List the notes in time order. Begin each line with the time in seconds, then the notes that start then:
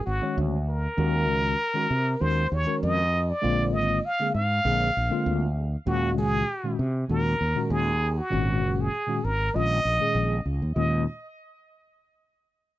0.05 G#1 F#4 G#4
0.21 D#3 G#3 C#4 F#4 C#5
0.38 D2
0.67 F#4 A#4
0.98 D#2 D#3 G#3 C#4 F#4 A#4
1.29 C#2
1.74 D#3 G#3 C#4 F#4 A#4
1.90 C3
2.20 D#2 D#3 G#3 C#4 F#4 A#4 C5
2.50 D#2 F#4 G#4 C#5
2.65 D#3 G#3 C#4 F#4 A#4
2.83 F2 D#5
3.12 F#4 A#4
3.30 D5
3.42 A#1 D3 G#3 A#3 C4 F4
3.73 G#1 D#5
4.05 F5
4.20 D3 G#3 A#3 C4 G#4
4.35 G#2 F5
4.64 A#1 D3 G#3 A#3 C4 G#4
4.95 A#1 C4 F4
5.10 D3 G#3 A#3 C4 F4
5.26 D2
5.56 C4 G#4
5.86 D#2 A#2 D#3 G#3 C#4 F#4
6.18 C#2 G#4
6.64 A#2 D#3 G#3 C#4 F#4
6.79 C3
7.08 D#2 A#2 D#3 G#3 C#4 F#4 A#4
7.40 D#2 C#4 F4
7.55 A#2 D#3 G#3 C#4 F#4
7.70 D#2 G#4
8.00 C#4 G#4
8.18 F#4
8.30 G#1 A#2 D#3 G#3 C#4 F#4
8.63 F#1
8.81 G#4
9.07 A#2 D#3 G#3 C#4 F#4
9.24 G#1 A#4
9.54 A#1 A#2 D#3 G#3 C#4 F4 D#5
9.85 A#1 C#4 G#4
10.00 A#2 D#3 G#3 C#4 G#4
10.15 A#1
10.46 C#2 C#4 G#4
10.62 D#2
10.74 D#2 A#2 D#3 G#3 C#4 F4 D#5